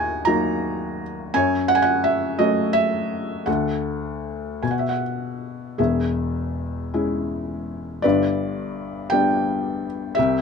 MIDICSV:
0, 0, Header, 1, 2, 480
1, 0, Start_track
1, 0, Tempo, 711744
1, 908, Time_signature, 6, 3, 24, 8
1, 2342, Tempo, 766284
1, 4742, Tempo, 715990
1, 6828, End_track
2, 0, Start_track
2, 0, Title_t, "Felt piano"
2, 0, Program_c, 0, 0
2, 0, Control_c, 0, 64, 127
2, 0, Note_on_c, 0, 39, 59
2, 0, Note_on_c, 0, 66, 50
2, 0, Note_on_c, 0, 75, 70
2, 0, Note_on_c, 0, 78, 87
2, 0, Note_on_c, 0, 80, 86
2, 163, Note_off_c, 0, 66, 0
2, 168, Note_on_c, 0, 82, 88
2, 181, Note_on_c, 0, 54, 47
2, 183, Note_on_c, 0, 58, 45
2, 183, Note_on_c, 0, 63, 54
2, 186, Note_off_c, 0, 80, 0
2, 693, Note_off_c, 0, 82, 0
2, 883, Note_off_c, 0, 39, 0
2, 884, Note_off_c, 0, 54, 0
2, 886, Note_off_c, 0, 58, 0
2, 886, Note_off_c, 0, 63, 0
2, 903, Note_on_c, 0, 80, 98
2, 904, Note_on_c, 0, 42, 64
2, 915, Control_c, 0, 64, 0
2, 917, Note_on_c, 0, 73, 67
2, 921, Note_off_c, 0, 75, 0
2, 921, Note_off_c, 0, 78, 0
2, 1026, Control_c, 0, 64, 127
2, 1135, Note_on_c, 0, 78, 96
2, 1151, Note_off_c, 0, 80, 0
2, 1180, Note_on_c, 0, 80, 76
2, 1186, Note_off_c, 0, 78, 0
2, 1229, Note_off_c, 0, 80, 0
2, 1230, Note_on_c, 0, 78, 91
2, 1375, Note_on_c, 0, 76, 83
2, 1385, Note_off_c, 0, 78, 0
2, 1593, Note_off_c, 0, 73, 0
2, 1609, Note_on_c, 0, 75, 80
2, 1610, Note_on_c, 0, 57, 46
2, 1612, Note_on_c, 0, 54, 48
2, 1618, Note_on_c, 0, 61, 52
2, 1619, Note_off_c, 0, 76, 0
2, 1842, Note_on_c, 0, 76, 91
2, 1855, Note_off_c, 0, 75, 0
2, 2311, Note_off_c, 0, 76, 0
2, 2314, Note_off_c, 0, 42, 0
2, 2318, Note_off_c, 0, 57, 0
2, 2319, Note_off_c, 0, 54, 0
2, 2322, Note_off_c, 0, 61, 0
2, 2333, Note_on_c, 0, 78, 66
2, 2339, Note_on_c, 0, 38, 55
2, 2340, Note_on_c, 0, 69, 45
2, 2352, Control_c, 0, 64, 0
2, 2458, Control_c, 0, 64, 127
2, 3042, Note_off_c, 0, 38, 0
2, 3044, Note_off_c, 0, 78, 0
2, 3048, Note_off_c, 0, 69, 0
2, 3064, Note_on_c, 0, 80, 52
2, 3069, Note_on_c, 0, 47, 54
2, 3072, Control_c, 0, 64, 0
2, 3116, Note_on_c, 0, 78, 48
2, 3128, Note_off_c, 0, 80, 0
2, 3168, Note_on_c, 0, 76, 55
2, 3184, Note_off_c, 0, 78, 0
2, 3203, Control_c, 0, 64, 127
2, 3229, Note_on_c, 0, 78, 56
2, 3239, Note_off_c, 0, 76, 0
2, 3299, Note_off_c, 0, 78, 0
2, 3773, Note_off_c, 0, 47, 0
2, 3788, Note_on_c, 0, 68, 44
2, 3791, Note_on_c, 0, 76, 56
2, 3793, Note_on_c, 0, 28, 45
2, 3799, Note_on_c, 0, 40, 45
2, 3800, Control_c, 0, 64, 0
2, 3912, Control_c, 0, 64, 127
2, 4512, Note_on_c, 0, 61, 38
2, 4513, Note_on_c, 0, 56, 42
2, 4514, Note_on_c, 0, 64, 45
2, 5206, Note_off_c, 0, 68, 0
2, 5209, Note_off_c, 0, 28, 0
2, 5212, Note_off_c, 0, 40, 0
2, 5216, Note_off_c, 0, 56, 0
2, 5216, Note_off_c, 0, 61, 0
2, 5217, Note_off_c, 0, 64, 0
2, 5224, Note_on_c, 0, 74, 67
2, 5235, Note_on_c, 0, 71, 50
2, 5241, Note_on_c, 0, 31, 50
2, 5243, Note_on_c, 0, 43, 57
2, 5245, Control_c, 0, 64, 0
2, 5280, Note_off_c, 0, 76, 0
2, 5344, Control_c, 0, 64, 127
2, 5928, Note_off_c, 0, 71, 0
2, 5944, Note_on_c, 0, 79, 90
2, 5959, Note_on_c, 0, 59, 45
2, 5960, Note_on_c, 0, 55, 48
2, 5964, Note_on_c, 0, 62, 51
2, 5971, Note_off_c, 0, 74, 0
2, 6456, Note_off_c, 0, 79, 0
2, 6642, Note_off_c, 0, 31, 0
2, 6643, Note_off_c, 0, 43, 0
2, 6646, Note_off_c, 0, 59, 0
2, 6647, Note_off_c, 0, 55, 0
2, 6648, Note_on_c, 0, 76, 89
2, 6649, Note_off_c, 0, 62, 0
2, 6659, Note_on_c, 0, 67, 65
2, 6675, Control_c, 0, 64, 0
2, 6676, Note_on_c, 0, 36, 60
2, 6676, Note_on_c, 0, 48, 66
2, 6781, Control_c, 0, 64, 127
2, 6828, Note_off_c, 0, 36, 0
2, 6828, Note_off_c, 0, 48, 0
2, 6828, Note_off_c, 0, 67, 0
2, 6828, Note_off_c, 0, 76, 0
2, 6828, End_track
0, 0, End_of_file